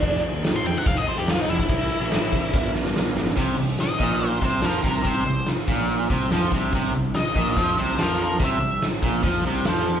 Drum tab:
CC |x-x-x-x-x-x-x-x-|x-x-x-x---------|x---------------|----------------|
HH |----------------|----------------|--x-x-x-x-x-x-x-|x-x-x-x-x-x-x-x-|
SD |----o-------o---|----o---o-ooo-oo|----o-------o---|----o-------o---|
BD |o-------o------o|o-----o-o-------|o-----o---o---o-|o-----o---o---o-|

CC |----------------|----------------|
HH |x-x-x-x-x-x-x-x-|x-x-x-x-x-x-x-x-|
SD |----o------oo---|----o-------o---|
BD |o-----o-o-------|o-----o-o-------|